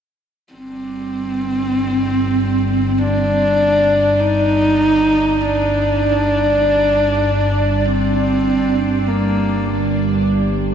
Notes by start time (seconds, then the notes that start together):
0.49 G1 G2 G3 D4 D5
0.53 C4
1.38 D4
2.98 D4
4.20 D#4
4.78 D5
5.41 D4
7.86 C4
9.08 A#3